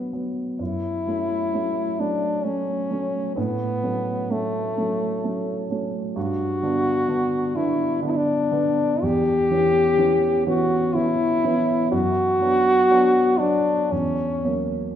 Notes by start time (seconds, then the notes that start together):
Already playing: F#3 B3
0.13 F#3 B3
0.59 F#2 E4
1.06 F#3 A3 C#4
1.53 F#3 A3 C#4
1.99 F#3 A3 C#4 D4
2.44 F#3 A3 C#4
2.90 F#3 A3 C#4
3.36 A2 B3
3.83 F#3 A3 C#4
4.30 F#3 A3 C#4
4.77 F#3 A3 C#4
5.24 F#3 A3 C#4
5.70 F#3 A3 C#4
6.16 G2 F#4
6.63 D3 B3 D4
7.08 D3 B3 D4
7.55 D3 B3 D4 E4
8.02 D3 B3 D4
8.10 E4
8.16 D4
8.52 D3 B3 D4
9.02 E2 G4
9.51 E3 B3 C#4
9.98 E3 B3 C#4
10.46 E3 B3 C#4 F#4
10.95 E3 B3 C#4 E4
11.44 E3 B3 C#4
11.91 F#2 F#4
12.41 F#3 B3 D4
12.90 F#3 B3 D4
13.39 F#3 B3 D4
13.91 E2 C#4
14.44 F#3 A#3 C#4